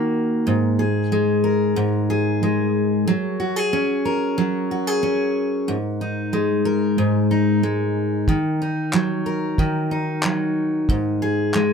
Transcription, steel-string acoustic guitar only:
Already playing: D#3 A#3 D#4 F#4 A#4
0.47 G#2
0.79 G#4
1.12 G#3
1.44 A#4
1.76 G#2
2.10 G#4
2.43 G#3
3.08 F#3
3.40 F#4
3.56 G#4
3.73 C#4
4.05 A#4
4.38 F#3
4.71 F#4
4.87 G#4
5.03 C#4
5.68 G#2
6.01 D#4
6.33 G#3
6.65 A#4
6.98 G#2
7.31 D#4
7.63 G#3
8.29 D#3
8.62 D#4
8.94 F#3
9.26 A#4
9.59 D#3
9.91 D#4
10.25 F#3
10.90 G#2
11.22 G#4
11.55 G#3

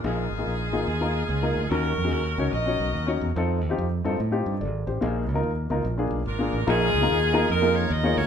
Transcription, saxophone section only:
0.05 D#4 F4 G#4
1.70 C#4 F#4 A#4
2.52 F#4 A#4 D#5
6.26 D4 F4 A#4
6.67 D#4 F4 G#4
7.49 D#4 F4 A#4
7.76 C#5
7.90 D#5
8.16 F#4 A#4 C#5

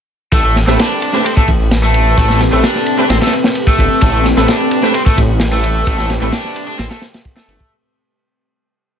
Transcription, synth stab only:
0.68 A3 C4 G4 B4
1.14 A3 C4 G4 B4
2.52 A3 C4 G4 B4
2.98 A3 C4 G4 B4
4.37 A3 C4 G4 B4
4.83 A3 C4 G4 B4
6.22 A3 C4 G4 B4

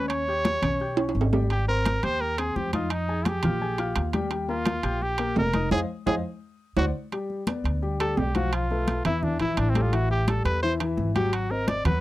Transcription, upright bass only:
Already playing: D#2
0.62 B1
1.15 G#1
2.03 D#2
2.56 F2
3.43 A#1
3.96 D#2
4.83 A#1
5.36 F1
5.71 F2
6.07 F2
6.76 D2
7.64 D2
8.17 B1
9.05 E2
9.40 A#1
9.57 A1
10.45 E2
10.97 G#1
11.85 D#2

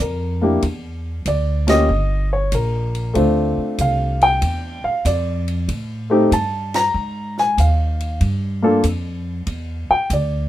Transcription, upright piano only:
0.02 A#4
0.42 A#3 D4 E4 G4
1.28 D5
1.67 A#3 C#4 F4 G4 D#5
2.33 C#5
2.54 A#4
3.14 A3 C4 D4 F4
3.81 F5
4.23 G5
4.84 F5
5.06 D5
6.10 A3 C4 D#4 G4
6.33 A5
6.75 A#5
7.39 G#5
7.60 F5
8.62 A#3 D4 F4 A4
9.91 G5
10.13 D5

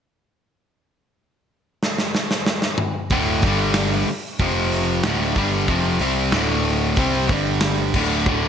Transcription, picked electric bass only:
3.10 D1
3.42 G1
4.08 muted picked electric bass stroke
4.39 F1
5.03 D1
5.36 G1
5.68 F1
6.00 C2
6.32 D1
6.97 C2
7.29 G1
7.94 D1
8.26 D1

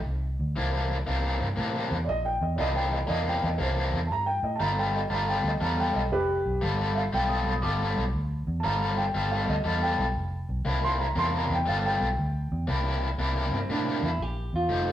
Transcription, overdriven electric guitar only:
0.56 C3 E3 A#3 D4
1.07 C3 E3 A#3 D4
1.56 C3 E3 A#3 D4
2.58 C3 E3 A#3 D4
3.07 C3 E3 A#3 D4
3.58 C3 E3 A#3 D4
4.60 G3 B3 F4 A4
5.10 G3 B3 F4 A4
5.61 G3 B3 F4 A4
6.62 G3 B3 F4 A4
7.13 G3 B3 F4 A4
7.62 G3 B3 F4 A4
8.64 G3 B3 F4 A4
9.15 G3 B3 F4 A4
9.64 G3 B3 F4 A4
10.65 C3 A#3 D4 E4
11.15 C3 A#3 D4 E4
11.66 G3 B3 F4 A4
12.67 C3 A#3 D4 E4
13.18 C3 A#3 D4 E4
13.70 C3 A#3 D4 E4
14.69 F3 A3 D#4 G4

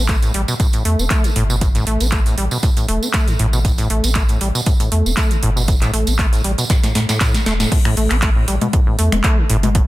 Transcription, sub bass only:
Already playing: A1
0.34 A1
0.85 E2
0.99 E1
1.36 G1
1.87 A1
2.00 A1
2.38 A1
2.88 E1
3.28 A2
3.39 A1
3.90 A1
4.04 A1
4.41 A1
4.92 E2
5.06 E1
5.43 G1
5.94 A1
6.07 A1
6.44 A1
6.95 A2
7.46 E1
7.97 A1
8.11 A1
8.48 A1
8.99 E2
9.12 E1
9.50 G1

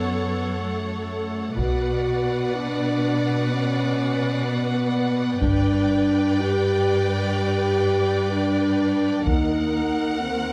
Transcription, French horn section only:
Already playing: B3
0.59 A3
1.57 F#4
2.56 D4
3.52 C#4
4.46 B3
5.39 D4
6.40 G4
7.33 G4
8.31 D4
9.28 D#4
10.20 C4

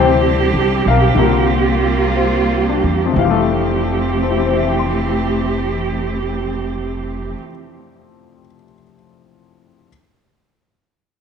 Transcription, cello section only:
Already playing: D3 G3 C4 G4
1.17 A#3 F4
3.17 E3 A3 C4 G4

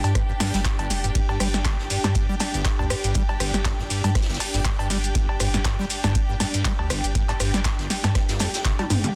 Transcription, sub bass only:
0.04 G2
0.54 G1
0.90 F1
1.15 G1
1.40 G1
1.79 G1
2.04 G2
2.79 D2
3.04 G1
3.15 G1
3.40 G1
3.79 G1
4.04 G2
4.54 G1
5.15 G1
5.40 G1
5.79 G1
6.04 G2
6.79 D2
7.04 G1
7.15 G1
7.40 G1
7.79 G1
8.04 G2
8.65 F1
8.79 G1
8.90 G2

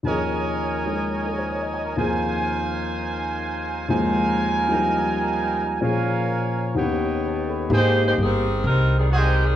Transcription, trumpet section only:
0.06 A#4 C#5 D#5 G#5
1.97 D#4 A#4 C5 F5 G#5
3.88 D#4 A#4 C5 F5 G#5
4.68 C5 D#5 G5 A#5
5.81 A#4 C#5 F5 G#5
6.76 B4 C#5 D#5 G5
7.24 A5
7.49 B5
7.71 G#4 C5 D#5 G5
9.13 G#4 C5 D#5 G#5

